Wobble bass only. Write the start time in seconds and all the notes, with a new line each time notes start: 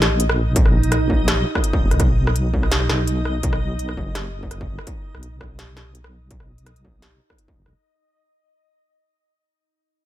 Already playing: A#1
1.82 F1
1.91 C#2
2.00 B1
2.89 B1
3.44 B1
3.97 F#1
5.15 B1
7.57 F#1
7.66 C#2